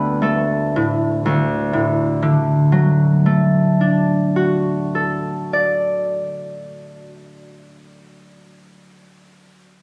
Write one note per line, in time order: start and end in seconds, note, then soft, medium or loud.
0.00 1.24 D2 medium
0.00 0.20 A3 soft
0.00 0.22 A4 soft
0.00 0.58 B4 soft
0.00 1.30 G5 soft
0.00 2.35 A5 medium
0.22 3.25 A3 soft
0.22 4.13 A4 soft
0.76 1.31 A2 soft
1.26 5.16 D2 soft
1.73 5.63 A2 soft
2.22 6.12 D3 soft
2.72 6.41 F#3 soft
3.26 6.59 A3 soft
3.81 6.98 D4 soft
4.36 7.53 F#4 soft
4.95 8.12 A4 soft
5.53 8.66 D5 soft